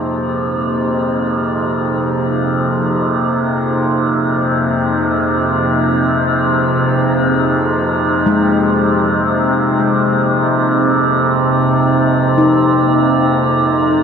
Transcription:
Already playing: synth drone F2 C3 D#4, analog synth pad F3 A#3 D#4 G#4 C5
8.26 kettle gongs G#3
12.38 kettle gongs D#4

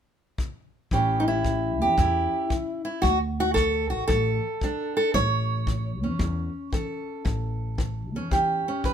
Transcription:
0.38 kick
0.91 upright bass A1, steel-string acoustic guitar A2 E3 C#4 G4, kick
1.20 steel-string acoustic guitar D#4
1.28 steel-string acoustic guitar E4
1.45 steel-string acoustic guitar E3, kick
1.81 upright bass E2, steel-string acoustic guitar G4
1.97 upright bass E2, steel-string acoustic guitar A2 E4, kick
2.50 steel-string acoustic guitar E3, kick
2.85 steel-string acoustic guitar E4
3.02 upright bass D2, steel-string acoustic guitar D3 F#4, kick
3.40 steel-string acoustic guitar F#4
3.54 steel-string acoustic guitar F#3 A4, kick
3.90 upright bass A1, steel-string acoustic guitar F#4
4.08 upright bass A1, steel-string acoustic guitar A2 A4, kick
4.61 steel-string acoustic guitar F#3 D4, kick
4.97 steel-string acoustic guitar A4
5.14 upright bass A1, steel-string acoustic guitar A2 C#5, kick
5.67 steel-string acoustic guitar E3, kick
6.03 upright bass E2, steel-string acoustic guitar C#4
6.19 upright bass E2, steel-string acoustic guitar E3, kick
6.72 steel-string acoustic guitar E3 A4, kick
7.25 upright bass A1, steel-string acoustic guitar A2, kick
7.78 steel-string acoustic guitar E3, kick
8.14 upright bass E2, steel-string acoustic guitar C#4
8.31 upright bass E2, steel-string acoustic guitar E3 G4, kick
8.68 steel-string acoustic guitar C#4
8.84 steel-string acoustic guitar E3 B4, kick

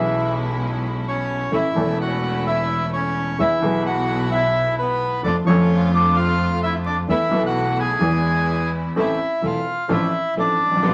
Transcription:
Already playing: double bass B1, upright piano B1 B2 E3 B3 C#4 G#4, string section G#3 C#4 E4, bandoneon E4 E5
1.08 bandoneon C#4 C#5
1.51 double bass A1, upright piano A1 A2 E3 A3 C#4 A4, string section A3 C#4 E4, bandoneon E5
1.56 bandoneon E4
1.74 double bass E1, upright piano E1 E2 E3 A3 C#4 A4, string section A3 C#4 E4
2.01 bandoneon F#4 F#5
2.47 bandoneon E4 E5
2.93 bandoneon C#4 C#5
3.38 double bass E2, upright piano E2 E3 G#3 B3 G#4, string section G#3 B3 E4, bandoneon E4 E5
3.60 upright piano B1 B2 E3 G#3 B3, double bass B1, string section G#3 B3 E4
3.64 upright piano G#4
3.86 bandoneon F#4 F#5
4.31 bandoneon E4 E5
4.79 bandoneon B3 B4
5.23 upright piano F2 F3 A3 D4 A4, double bass F2, string section A3 D4 F4, bandoneon D4 D5
5.46 double bass F2, upright piano F2 D3 F3 A3 A4, string section D3 F4, bandoneon C#4 C#5
5.94 bandoneon D4 D5
6.16 bandoneon F4 F5
6.63 bandoneon E4 E5
6.86 bandoneon D4 D5
7.08 double bass E2, upright piano E2 E3 A3 B3 A4, string section A3 B3 E4, bandoneon E4 E5
7.29 upright piano B1 B2 E3 A3 B3, double bass B1, string section A3
7.33 string section B3 E4, upright piano A4
7.46 bandoneon F#4 F#5
7.80 bandoneon G#4 G#5
8.01 upright piano E2 E3 G#3 B3 G#4, double bass E2, string section G#3 B3 E4
8.96 upright piano A1 A2 E3 A3 C4 A4, double bass A1, string section A3 C4 E4, bandoneon E4 E5
9.42 double bass E1, upright piano E1 E2 E3 A3 C4 A4, string section A3 C4 E4, bandoneon F4
9.46 bandoneon F5
9.89 double bass A1, upright piano A1 A2 F3 C4 D4 A4, string section A3 D4 F4, bandoneon E4 E5
10.36 double bass A1, upright piano A1 A2 F3 C4 D4 A4, string section A3 D4 F4, bandoneon D4 D5
10.60 double bass A1
10.66 upright piano G#1
10.71 upright piano A1
10.76 upright piano A#1
10.82 upright piano B1 B2 F3 B3 D4 G4, double bass B1, string section G3 B3 F4

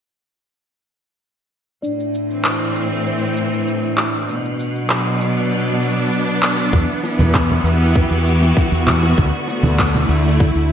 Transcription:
1.82 string section A2, singing bowl D4 D5, shaker
2.00 shaker
2.14 shaker
2.28 string section E3 C4, shaker
2.44 clap, shaker
2.61 shaker
2.76 shaker
2.92 shaker
3.07 shaker
3.22 shaker
3.37 shaker
3.53 shaker
3.68 shaker
3.84 shaker
3.97 clap, shaker
4.15 shaker
4.28 string section B2, shaker
4.45 shaker
4.60 shaker
4.76 shaker
4.81 string section F#3
4.90 clap, shaker
5.06 shaker
5.21 string section B3 D4, shaker
5.37 shaker
5.52 shaker
5.68 shaker
5.82 shaker
5.98 shaker
6.13 shaker
6.29 shaker
6.42 clap, shaker
6.59 shaker
6.73 fretless electric bass E2, string section E3, kick, shaker
6.90 shaker
7.04 high bongo, shaker
7.19 fretless electric bass E2, high conga, low conga, shaker
7.34 kick, clap, shaker
7.50 high bongo, low conga, shaker
7.54 string section F#4 G4
7.64 fretless electric bass E2, shaker
7.82 shaker
7.96 kick, shaker
8.11 fretless electric bass E2, shaker
8.27 shaker
8.42 high bongo, shaker
8.57 kick, shaker
8.72 fretless electric bass E2, shaker
8.87 clap, high bongo, low conga, shaker
9.03 high bongo, shaker
9.17 fretless electric bass D2, string section D3, kick, shaker
9.35 shaker
9.46 string section A3, high bongo, shaker
9.63 fretless electric bass D2, high conga, low conga, shaker
9.79 kick, clap, shaker
9.95 high bongo, low conga, shaker
10.03 string section E4
10.09 fretless electric bass D2, shaker
10.27 shaker
10.40 kick, shaker
10.56 fretless electric bass D2, shaker

